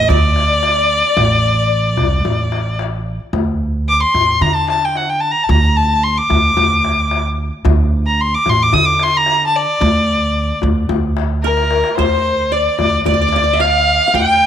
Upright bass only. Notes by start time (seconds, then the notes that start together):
0.09 D2
1.17 A1
1.98 C2
2.25 A1
3.33 D2
4.14 A1
4.41 D3
5.49 D2
6.30 D2
6.57 D2
7.65 D2
8.47 A1
8.73 D3
9.81 D2
10.63 D2
10.89 D2
11.98 D2
12.80 D2
13.06 D2
14.14 D2